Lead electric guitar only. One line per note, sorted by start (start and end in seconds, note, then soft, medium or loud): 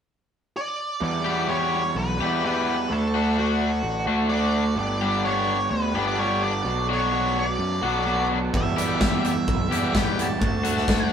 0.57 1.00 D5 medium
1.04 1.48 D5 medium
1.49 1.97 C#5 medium
1.98 2.44 B4 medium
2.45 2.93 B4 medium
2.92 3.38 A4 medium
3.38 4.04 F#4 medium
4.29 4.78 D5 loud
4.79 5.25 D5 loud
5.25 5.70 C#5 medium
5.71 6.04 B4 medium
6.08 6.19 D5 medium
6.19 6.43 C#5 medium
6.43 6.87 D5 medium
6.93 7.37 C#5 medium
7.38 8.27 D5 medium
8.57 9.25 E5 medium
9.26 9.97 E5 medium
9.97 10.19 G5 medium
10.22 11.09 A5 medium